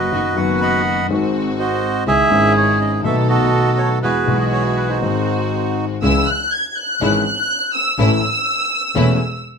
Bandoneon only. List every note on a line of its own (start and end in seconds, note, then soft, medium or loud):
0.00 0.81 F#4 medium
0.00 0.81 B4 medium
0.00 0.38 D#5 medium
0.37 0.59 F#5 medium
0.61 1.07 D#5 medium
0.61 1.07 F#5 medium
0.61 1.06 B5 medium
1.59 2.04 F#4 medium
1.59 2.04 C5 medium
1.59 2.04 D#5 medium
2.08 3.01 G#4 medium
2.08 2.53 E5 loud
2.57 2.79 C#5 medium
2.81 2.92 D#5 medium
3.05 3.28 A4 medium
3.05 3.16 E5 medium
3.29 3.99 F#4 medium
3.29 3.99 A4 medium
3.29 3.79 D#5 medium
3.78 3.89 C#5 medium
4.03 4.88 F#4 medium
4.03 4.98 G#4 medium
4.03 4.37 B4 medium
4.40 4.46 D#5 medium
4.52 4.63 C#5 medium
4.77 4.90 B4 medium
4.88 5.86 D#4 soft
4.88 5.86 F#4 soft
4.88 5.73 C5 medium